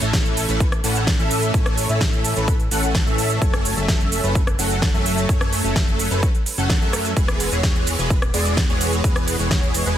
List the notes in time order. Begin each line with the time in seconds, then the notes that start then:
0.02 A1 E3 A3 C#4 A4 E5, closed hi-hat, shaker
0.13 kick, snare, closed hi-hat, shaker
0.26 shaker
0.37 open hi-hat, shaker
0.49 A1 E3 A3 C#4 A4 B4, closed hi-hat, shaker
0.60 kick, closed hi-hat, shaker
0.72 cross-stick, closed hi-hat, shaker
0.84 A1 E3 A3 C#4 A4 F#5, open hi-hat, shaker
0.95 closed hi-hat, shaker
1.07 kick, snare, closed hi-hat, shaker
1.19 A1 E3 A3 C#4 A4 E5, shaker
1.31 open hi-hat, shaker
1.42 closed hi-hat, shaker
1.54 A1 E3 A3 C#4 A4 C#5, kick, closed hi-hat, shaker
1.66 cross-stick, closed hi-hat, shaker
1.78 open hi-hat, shaker
1.89 A1 E3 A3 C#4 A4 E5, closed hi-hat, shaker
2.01 kick, snare, closed hi-hat, shaker
2.13 shaker
2.24 open hi-hat, shaker
2.36 A1 E3 A3 C#4 A4 B4, closed hi-hat, shaker
2.48 kick, closed hi-hat, shaker
2.60 closed hi-hat, shaker
2.71 A1 E3 A3 C#4 A4 F#5, open hi-hat, shaker
2.83 closed hi-hat, shaker
2.95 kick, snare, closed hi-hat, shaker
3.06 A1 E3 A3 C#4 A4 E5, shaker
3.18 open hi-hat, shaker
3.30 closed hi-hat, shaker
3.42 F#1 F#3 A3 C#4 A4 C#5, kick, closed hi-hat, shaker
3.53 cross-stick, closed hi-hat, shaker
3.65 open hi-hat, shaker
3.77 F#1 F#3 A3 C#4 A4 E5, closed hi-hat, shaker
3.88 kick, snare, closed hi-hat, shaker
4.01 shaker
4.12 open hi-hat, shaker
4.24 F#1 F#3 A3 C#4 A4 B4, closed hi-hat, shaker
4.35 kick, closed hi-hat, shaker
4.47 cross-stick, closed hi-hat, shaker
4.59 F#1 F#3 A3 C#4 A4 F#5, open hi-hat, shaker
4.71 closed hi-hat, shaker
4.82 kick, snare, closed hi-hat, shaker
4.94 F#1 F#3 A3 C#4 A4 E5, shaker
5.06 open hi-hat, shaker
5.18 closed hi-hat, shaker
5.29 F#3 A3 C#4 A4 C#5, kick, closed hi-hat, shaker
5.41 cross-stick, closed hi-hat, shaker
5.53 open hi-hat, shaker
5.64 F#1 F#3 A3 C#4 A4 E5, closed hi-hat, shaker
5.76 kick, snare, closed hi-hat, shaker
5.88 shaker
5.99 open hi-hat, shaker
6.11 F#1 F#3 A3 C#4 A4 B4, closed hi-hat, shaker
6.23 kick, closed hi-hat, shaker
6.35 closed hi-hat, shaker
6.46 open hi-hat, shaker
6.58 F#1 F#3 A3 C#4 A4 F#5, closed hi-hat, shaker
6.70 kick, snare, closed hi-hat, shaker
6.81 F#2 F#3 A3 C#4 A4 E5, shaker
6.93 cross-stick, open hi-hat, shaker
7.05 closed hi-hat, shaker
7.16 E1 E3 G#3 B3 G#4 B4, kick, closed hi-hat, ride, shaker
7.28 cross-stick, closed hi-hat, shaker
7.40 open hi-hat, ride, shaker
7.52 E1 E3 G#3 B3 G#4 C#5, closed hi-hat, shaker
7.63 kick, snare, closed hi-hat, ride, shaker
7.76 shaker
7.87 open hi-hat, ride, shaker
7.99 E1 E3 G#3 B3 G#4 B4, closed hi-hat, shaker
8.10 kick, closed hi-hat, ride, shaker
8.22 cross-stick, closed hi-hat, shaker
8.34 E1 E3 G#3 B3 G#4 D5, open hi-hat, ride, shaker
8.46 closed hi-hat, shaker
8.57 kick, snare, closed hi-hat, ride, shaker
8.69 E1 E3 G#3 B3 G#4 C#5, shaker
8.81 open hi-hat, ride, shaker
8.92 closed hi-hat, shaker
9.04 E1 E3 G#3 B3 G#4 B4, kick, closed hi-hat, ride, shaker
9.16 cross-stick, closed hi-hat, shaker
9.28 open hi-hat, ride, shaker
9.39 E1 E3 G#3 B3 G#4 C#5, closed hi-hat, shaker
9.51 kick, snare, closed hi-hat, ride, shaker
9.63 shaker
9.74 open hi-hat, ride, shaker
9.86 E1 E3 G#3 B3 G#4 B4, closed hi-hat, shaker